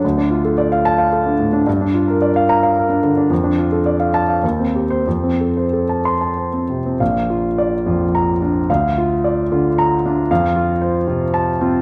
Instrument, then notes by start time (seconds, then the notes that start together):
grand piano
0.05 D2
0.18 D4
0.30 F4
0.45 A4
0.58 D5
0.72 F5
0.85 A5
0.98 F5
1.12 A4
1.26 D4
1.39 A2
1.53 D4
1.67 G2
1.81 D4
1.94 F4
2.08 A#4
2.22 D5
2.36 F5
2.49 A#5
2.63 F5
2.77 A#4
2.89 D4
3.03 D3
3.17 D4
3.30 F2
3.44 D4
3.58 F4
3.72 A4
3.86 D5
4.00 F5
4.14 A5
4.29 F5
4.43 D#2
4.60 C4
4.75 G4
4.90 C5
5.07 F2
5.24 C4
5.41 A4
5.57 C5
5.73 A4
5.89 A5
6.05 C6
6.21 A5
6.37 C5
6.53 C4
6.70 C3
6.86 C4
7.00 A#1 F5
7.30 F4
7.58 D5
7.86 F2 F4
8.15 A#5
8.42 D4 F4
8.70 D2 F5
8.98 F4
9.24 D5
9.52 D3 F4
9.78 A#5
10.06 D4 F4
10.31 F2 F5
10.56 F4
10.81 C5
11.08 C3 F4
11.34 A5
11.61 C4 F4